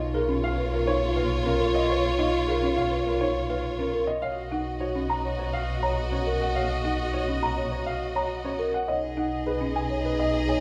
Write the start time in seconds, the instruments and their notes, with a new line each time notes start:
Already playing: double bass B1, violin section F4 C#5, french horn F4
0.14 marimba G#4, grand piano A#4
0.29 marimba C#4
0.44 grand piano F5
0.58 marimba B4
0.73 grand piano A#4
0.87 marimba D#4, grand piano C#5
1.16 marimba B4, grand piano F5
1.46 marimba C#4, grand piano A#4
1.60 marimba A#4
1.75 grand piano D#5
1.90 marimba B4, grand piano C#5
2.19 marimba D#4, grand piano D#5
2.48 marimba G#4, grand piano A#4
2.62 marimba C#4
2.77 grand piano F5
2.91 marimba B4
3.06 grand piano A#4
3.21 marimba D#4, grand piano C#5
3.49 marimba B4, grand piano F5
3.79 marimba C#4, grand piano A#4
3.93 marimba A#4
4.07 grand piano D#5
4.22 double bass B1, french horn F#4, violin section F#4 D#5, marimba C#5, grand piano F5
4.51 marimba D#4, grand piano F#5
4.80 marimba F#4, grand piano C#5
4.95 marimba C#4
5.10 grand piano A#5
5.25 marimba C#5
5.39 grand piano C#5
5.53 grand piano F5
5.83 marimba C#5, grand piano A#5
6.12 marimba C#4, grand piano C#5
6.26 marimba A#4
6.41 grand piano F#5
6.55 marimba C#5, grand piano F5
6.85 marimba D#4, grand piano F#5
7.14 marimba F#4, grand piano C#5
7.28 marimba C#4
7.43 grand piano A#5
7.57 marimba C#5
7.72 grand piano C#5
7.86 grand piano F5
8.15 marimba C#5, grand piano A#5
8.44 marimba C#4, grand piano C#5
8.59 marimba A#4
8.74 grand piano F#5
8.88 double bass B1, french horn D#4, violin section G#4 D#5, marimba C#5, grand piano D#5
9.17 marimba D#4, grand piano F#5
9.46 marimba G#4, grand piano B4
9.61 marimba C#4
9.75 grand piano G#5
9.90 marimba C#5
10.05 grand piano B4
10.19 grand piano D#5
10.48 marimba C#5, grand piano G#5